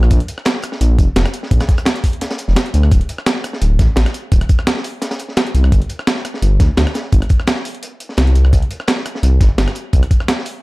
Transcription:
0.03 cross-stick
0.11 detuned saw bass A#1, kick, closed hi-hat
0.20 closed hi-hat
0.28 closed hi-hat
0.38 cross-stick
0.45 snare, closed hi-hat
0.55 snare
0.62 cross-stick, closed hi-hat
0.72 snare
0.81 detuned saw bass A#1, closed hi-hat
0.98 detuned saw bass F1, kick, closed hi-hat
1.16 detuned saw bass F1, snare, closed hi-hat
1.25 cross-stick, snare, closed hi-hat
1.33 closed hi-hat
1.43 snare
1.51 detuned saw bass A#1, kick, closed hi-hat
1.60 cross-stick, snare, closed hi-hat
1.69 kick, snare, closed hi-hat
1.78 cross-stick, closed hi-hat
1.85 snare, closed hi-hat
1.96 snare, closed hi-hat
2.04 kick, closed hi-hat, open hi-hat
2.13 closed hi-hat
2.21 snare, closed hi-hat
2.31 snare, closed hi-hat
2.38 closed hi-hat
2.48 detuned saw bass F1, snare
2.56 snare, closed hi-hat
2.66 closed hi-hat
2.74 detuned saw bass D2, closed hi-hat
2.83 cross-stick
2.91 detuned saw bass D1, kick, closed hi-hat
3.01 closed hi-hat
3.09 closed hi-hat
3.18 cross-stick
3.26 snare, closed hi-hat
3.36 snare
3.44 cross-stick, closed hi-hat
3.53 snare
3.61 detuned saw bass D1, closed hi-hat
3.79 detuned saw bass A1, kick, snare, closed hi-hat
3.96 detuned saw bass A1, snare, closed hi-hat
4.06 cross-stick, snare, closed hi-hat
4.14 closed hi-hat
4.32 detuned saw bass D1, kick, closed hi-hat
4.41 cross-stick, closed hi-hat
4.49 kick, closed hi-hat
4.59 cross-stick
4.67 snare, closed hi-hat
4.77 snare
4.84 closed hi-hat, open hi-hat
5.02 snare, closed hi-hat
5.11 snare, closed hi-hat
5.19 closed hi-hat
5.29 snare
5.37 snare, closed hi-hat
5.47 closed hi-hat
5.55 detuned saw bass C2, closed hi-hat
5.64 cross-stick
5.72 detuned saw bass G1, kick, closed hi-hat
5.82 closed hi-hat
5.89 closed hi-hat
5.99 cross-stick
6.07 snare, closed hi-hat
6.16 snare
6.25 cross-stick, closed hi-hat
6.34 snare
6.42 detuned saw bass G1, closed hi-hat
6.60 detuned saw bass D2, kick, snare, closed hi-hat
6.77 detuned saw bass D2, snare, closed hi-hat
6.87 cross-stick, snare, closed hi-hat
6.94 snare, closed hi-hat
7.12 detuned saw bass G1, kick, closed hi-hat
7.22 cross-stick, closed hi-hat
7.29 kick, closed hi-hat
7.40 cross-stick
7.47 snare, closed hi-hat
7.56 snare
7.65 closed hi-hat, open hi-hat
7.75 closed hi-hat
7.83 closed hi-hat
8.00 closed hi-hat
8.09 snare
8.17 detuned saw bass C2, snare, closed hi-hat
8.27 closed hi-hat
8.35 closed hi-hat
8.45 cross-stick
8.53 detuned saw bass C2, kick, closed hi-hat
8.62 closed hi-hat
8.71 closed hi-hat
8.80 cross-stick
8.88 snare, closed hi-hat
8.97 snare
9.06 cross-stick, closed hi-hat
9.15 snare
9.23 detuned saw bass C2, closed hi-hat
9.40 detuned saw bass G1, kick, snare, closed hi-hat
9.58 detuned saw bass G1, snare, closed hi-hat
9.68 cross-stick, snare, closed hi-hat
9.75 closed hi-hat
9.93 detuned saw bass C2, kick, closed hi-hat
10.03 cross-stick, closed hi-hat
10.11 kick, closed hi-hat
10.20 cross-stick
10.28 snare, closed hi-hat
10.38 snare
10.45 closed hi-hat, open hi-hat

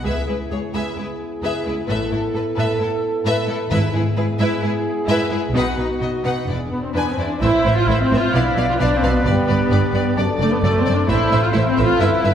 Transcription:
0.02 cello section C#2, double bass section C#2, french horn section B3 E4, viola section G#4, trumpet section G#4, violin section B4 E5
0.27 cello section C#2, violin section E4 B4, viola section G#4
0.50 cello section C#2, viola section G#4, violin section G#4 C#5
0.73 cello section C#2, viola section G#4, violin section B4 E5
0.96 cello section C#2, violin section E4 B4, viola section G#4
1.43 cello section C#2, viola section G#4, violin section B4 E5
1.66 cello section C#2, violin section E4 B4, viola section G#4
1.88 double bass section A1, cello section A2, trumpet section A4, viola section A4, violin section B4 E5
2.11 cello section A2, violin section E4 A4, viola section A4
2.33 cello section A2, violin section A4 B4, viola section A4
2.56 cello section A2, viola section A4, violin section B4 E5
2.79 cello section A2, violin section E4 A4, viola section A4
3.25 cello section A2, viola section A4, violin section B4 E5
3.48 cello section A2, violin section E4 A4, viola section A4
3.70 double bass section G#1, cello section G#2, timpani G#2, french horn section B3 E4, viola section E4, trumpet section G#4, violin section B4 E5
3.93 cello section G#2, violin section E4 G#4, viola section E4
4.16 cello section G#2, viola section E4, violin section G#4 B4
4.39 cello section G#2, viola section E4, violin section B4 E5
4.61 cello section G#2, viola section E4, violin section E4 G#4
5.06 cello section G#2, viola section E4, violin section B4 E5
5.30 cello section G#2, viola section E4, violin section E4 G#4
5.53 double bass section B1, cello section B2, viola section D#4, french horn section D#4, trumpet section F#4, violin section B4 F#5
5.76 cello section B2, violin section D#4 B4, viola section D#4
6.00 cello section B2, viola section D#4, violin section F#4 D#5
6.24 cello section B2, viola section D#4, violin section B4 F#5
6.47 double bass section E1, cello section E2, viola section D4, french horn section D4, violin section E4 D5, trumpet section G#4
6.71 viola section B3, trumpet section B4
6.82 viola section C4, trumpet section C5
6.94 cello section E2, viola section B3 D4, violin section B4 G#5, trumpet section B4
7.10 viola section C4, trumpet section C5
7.18 cello section E2, viola section D4, violin section E4 D5
7.26 viola section D4, trumpet section D5
7.40 double bass section A1, cello section A2, french horn section C4 E4, viola section E4, violin section B4 C5 E5, clarinet C5, oboe C5, flute section E5, trumpet section E5
7.65 double bass section A1, cello section A2, violin section B4 C5 E5
7.75 viola section F4, trumpet section F5
7.86 double bass section A1, cello section A2, viola section E4, violin section B4 C5, clarinet C5, flute section E5, trumpet section E5
7.90 violin section E5
8.03 viola section C4, trumpet section C5
8.11 double bass section A1, cello section A2, violin section B4 C5 E5
8.17 viola section F4, trumpet section F5
8.32 double bass section B1, cello section B2, french horn section F3 D4, viola section E4, oboe B4, violin section B4 D5 F5, clarinet D5, flute section F5, trumpet section F5
8.57 double bass section B1, cello section B2, violin section B4 D5 F5
8.68 viola section F4, trumpet section F5
8.79 double bass section B1, cello section B2, viola section D4, violin section B4 D5 F5, trumpet section D5, clarinet D5
8.95 viola section C4, trumpet section C5
9.02 double bass section B1, cello section B2, violin section B4 D5 F5
9.10 viola section B3, trumpet section B4
9.24 double bass section G1, cello section G2, viola section B3, french horn section G4, violin section B4 D5, trumpet section B4, clarinet D5, flute section G5
9.48 double bass section G1, cello section G2, violin section B4 D5
9.71 double bass section G1, cello section G2, violin section B4 D5
9.93 double bass section G1, cello section G2, violin section B4 D5
10.16 double bass section F#1, cello section F#2, french horn section A4, clarinet D5, oboe D5, violin section D5, flute section A5
10.39 double bass section F#1, cello section F#2, viola section A3, trumpet section A4, violin section D5
10.51 viola section B3, trumpet section B4
10.63 double bass section F#1, cello section F#2, viola section A3, trumpet section A4, clarinet D5, violin section D5, flute section A5
10.78 viola section C4, trumpet section C5
10.86 double bass section F#1, cello section F#2, violin section D5
10.94 viola section D4, trumpet section D5
11.07 double bass section A1, cello section A2, french horn section C4 A4, viola section E4, violin section B4 C5 E5, oboe C5, clarinet C5, trumpet section E5, flute section B5
11.31 double bass section A1, cello section A2, violin section B4 C5 E5
11.42 viola section F4, trumpet section F5
11.53 double bass section A1, cello section A2, viola section E4, violin section B4 C5 E5, clarinet C5, trumpet section E5, flute section B5
11.68 viola section C4, trumpet section C5
11.77 double bass section A1, cello section A2, violin section B4 C5 E5
11.84 viola section F4, trumpet section F5
11.99 double bass section G1, cello section G2, french horn section B3, viola section E4, oboe B4, clarinet B4, violin section B4 E5, trumpet section E5
12.23 double bass section G1, cello section G2, violin section B4 E5

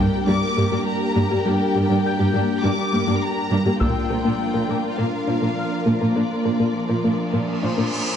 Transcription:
Already playing: ambient pad G3 A#3 D4 D5, violin section G4 A#4 G5
0.27 cello section G2, synth arpeggio sound G3, viola section A#3 D4, violin section D6
0.57 cello section G2, viola section G3 A#3, synth arpeggio sound A#3
0.71 cello section G2, synth arpeggio sound G3, viola section A#3 D4
0.87 violin section A#5
1.15 cello section G2, synth arpeggio sound G3, viola section A#3 D4
1.30 cello section G2, viola section A#3, synth arpeggio sound G4
1.46 cello section G2, synth arpeggio sound G3, viola section A#3 D4, violin section G5
1.75 cello section G2, viola section G3 A#3, synth arpeggio sound G4
1.89 cello section G2, synth arpeggio sound G3, viola section A#3 D4
2.06 grand piano G5 G6
2.19 cello section G2, viola section G3 A#3, synth arpeggio sound G4
2.34 cello section G2, synth arpeggio sound G3, viola section A#3 D4
2.63 cello section G2, synth arpeggio sound G3, viola section A#3 D4, violin section D6
2.93 cello section G2, viola section G3 A#3, synth arpeggio sound A#3
3.07 cello section G2, synth arpeggio sound G3, viola section A#3 D4
3.21 violin section A#5
3.51 cello section G2, synth arpeggio sound G3, viola section A#3 D4
3.66 cello section G2, viola section A#3, synth arpeggio sound G4
3.80 cello section A#2, ambient pad F3 A#3 D4 D5, viola section A#3 D4, synth arpeggio sound A#3, violin section F4 A#4 G5, grand piano E6, taiko
4.10 cello section A#2, viola section F3 A#3, synth arpeggio sound A#4
4.25 cello section A#2, synth arpeggio sound A#3, viola section A#3 D4
4.54 cello section A#2, viola section F3 A#3, synth arpeggio sound A#4
4.69 cello section A#2, viola section A#3 D4, synth arpeggio sound A#3
4.98 cello section A#2, viola section A#3 D4, synth arpeggio sound A#3, violin section F5
5.28 cello section A#2, viola section F3 A#3, synth arpeggio sound D4
5.42 cello section A#2, synth arpeggio sound A#3, viola section A#3 D4
5.58 grand piano F6
5.86 cello section A#2, synth arpeggio sound A#3, viola section A#3 D4
6.00 cello section A#2, viola section A#3, synth arpeggio sound A#4
6.15 cello section A#2, viola section A#3 D4, synth arpeggio sound A#3, violin section D5, cymbal swell
6.44 cello section A#2, viola section F3 A#3, synth arpeggio sound A#4
6.59 cello section A#2, viola section A#3 D4, synth arpeggio sound A#3
6.88 cello section A#2, viola section F3 A#3, synth arpeggio sound A#4
7.04 cello section A#2, viola section A#3 D4, synth arpeggio sound A#3
7.33 cello section A#2, viola section A#3 D4, synth arpeggio sound A#3
7.61 cello section A#2, viola section F3 A#3, synth arpeggio sound D4, grand piano C5 C6
7.77 cello section A#2, viola section A#3 D4, synth arpeggio sound A#3

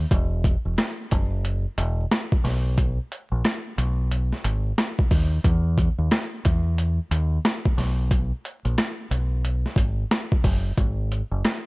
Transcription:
0.11 fingered electric bass E1, kick, closed hi-hat
0.44 kick, closed hi-hat
0.65 fingered electric bass E1
0.78 cross-stick, snare, closed hi-hat
1.11 fingered electric bass F#1, kick, closed hi-hat
1.45 closed hi-hat
1.78 fingered electric bass E1, closed hi-hat
2.11 cross-stick, snare, closed hi-hat
2.32 kick
2.44 fingered electric bass B1, snare, open hi-hat
2.78 kick, closed hi-hat
3.12 closed hi-hat
3.32 fingered electric bass A#1
3.45 cross-stick, snare, closed hi-hat
3.78 fingered electric bass B1, closed hi-hat
4.11 closed hi-hat
4.33 snare
4.44 fingered electric bass G#1, closed hi-hat
4.78 cross-stick, snare, closed hi-hat
4.99 kick
5.11 fingered electric bass D#2, kick, open hi-hat
5.44 fingered electric bass E2, kick, closed hi-hat
5.78 kick, closed hi-hat
5.98 fingered electric bass D#2
6.11 cross-stick, snare, closed hi-hat
6.45 fingered electric bass E2, kick, closed hi-hat
6.78 closed hi-hat
7.11 fingered electric bass D#2, closed hi-hat
7.45 cross-stick, snare, closed hi-hat
7.65 kick
7.78 fingered electric bass B1, snare, open hi-hat
8.11 kick, closed hi-hat
8.45 closed hi-hat
8.65 fingered electric bass A#1, closed hi-hat
8.78 cross-stick, snare, closed hi-hat
9.11 fingered electric bass B1, closed hi-hat
9.45 closed hi-hat
9.66 snare
9.76 fingered electric bass G#1, kick, closed hi-hat
10.11 cross-stick, snare, closed hi-hat
10.32 kick
10.44 fingered electric bass F#1, kick, open hi-hat
10.78 fingered electric bass G#1, kick, closed hi-hat
11.12 closed hi-hat
11.31 fingered electric bass F#1
11.45 cross-stick, snare, closed hi-hat

